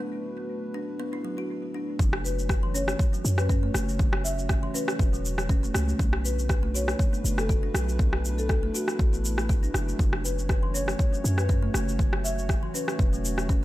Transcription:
Already playing: A3 D4 F#4 B4
0.74 D4
1.00 B3
1.13 E4
1.25 F#3
1.38 F#4
1.74 D4
1.99 F#1 F#3 A3 C#4 F#4 C#5, kick, shaker
2.13 cross-stick
2.24 B4, shaker
2.39 shaker
2.49 kick, cross-stick, shaker
2.63 E3
2.74 C#4 C#5, shaker
2.88 cross-stick, shaker
2.99 kick, shaker
3.13 F#3, shaker
3.25 F#2, shaker
3.38 B4, cross-stick, shaker
3.49 C#4, kick, shaker
3.63 A3
3.74 F#1 C#3, cross-stick, shaker
3.89 shaker
3.99 F#3, kick, shaker
4.13 cross-stick
4.24 E5, shaker
4.39 shaker
4.49 kick, cross-stick, shaker
4.63 E3
4.74 C#4 B4, shaker
4.88 cross-stick, shaker
4.99 E1, kick, shaker
5.13 F#3, shaker
5.25 shaker
5.38 cross-stick, shaker
5.49 C#4, kick, shaker
5.63 A3, shaker
5.74 C#2 C#3, cross-stick, shaker
5.89 shaker
5.99 B1 B3 D4 B4, kick, shaker
6.13 cross-stick
6.25 B4, shaker
6.39 shaker
6.49 kick, cross-stick, shaker
6.63 A3
6.74 F#4 C#5, shaker
6.88 cross-stick, shaker
6.99 kick, shaker
7.13 B3, shaker
7.24 F#1, shaker
7.38 A4, cross-stick, shaker
7.49 F#4, kick, shaker
7.63 D4
7.74 B1 F#3, cross-stick, shaker
7.89 shaker
7.99 B3 E4, kick, shaker
8.13 cross-stick
8.25 shaker
8.38 A4, shaker
8.49 A4, kick, cross-stick, shaker
8.63 A3
8.74 F#4, shaker
8.88 cross-stick, shaker
8.99 A1, kick, shaker
9.13 B3, shaker
9.25 shaker
9.38 cross-stick, shaker
9.49 F#4, kick, shaker
9.63 D4, shaker
9.74 F#1 F#3, cross-stick, shaker
9.89 shaker
9.99 F#1 F#3 A3 C#4 F#4 C#5, kick, shaker
10.13 cross-stick
10.24 B4, shaker
10.39 shaker
10.49 kick, cross-stick, shaker
10.63 E3
10.74 C#4 C#5, shaker
10.88 cross-stick, shaker
10.99 kick, shaker
11.13 F#3, shaker
11.24 F#2, shaker
11.38 B4, cross-stick, shaker
11.49 C#4, kick, shaker
11.63 A3
11.74 F#1 C#3, cross-stick, shaker
11.89 shaker
11.99 F#3, kick, shaker
12.13 cross-stick
12.24 E5, shaker
12.39 shaker
12.49 kick, cross-stick, shaker
12.63 E3
12.74 C#4 B4, shaker
12.88 cross-stick, shaker
12.99 E1, kick, shaker
13.13 F#3, shaker
13.25 shaker
13.38 cross-stick, shaker
13.49 C#4, kick, shaker

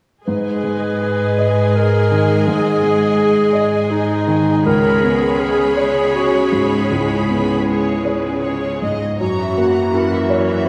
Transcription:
0.26 G#2 G#3 G#4 B4 D#5 G#5
0.63 G#3
1.01 G#4
1.38 D#5
1.76 G#4 A#4
2.11 D#3
2.48 G#2 G#4
2.82 G#3
3.17 G#4
3.53 D#5
3.90 D#4 G#4
4.27 D#3
4.65 C#2 C#3 G#3 G#4 A#4 C#5 B5
5.04 B3
5.40 G#4
5.77 C#5
6.14 F#4 G#4
6.52 G#2
6.91 C#2 E4
7.28 B3
7.67 G#4 C#5
8.05 B4 C#5
8.43 G#4 C#5
8.82 G#2 D#5
9.19 F#2 E3 F#4 C#5 A#5
9.40 E5
9.57 A#3 F#5
9.76 A#5
9.94 E4 A#4 F#5
10.12 E5
10.30 C#5
10.50 E5

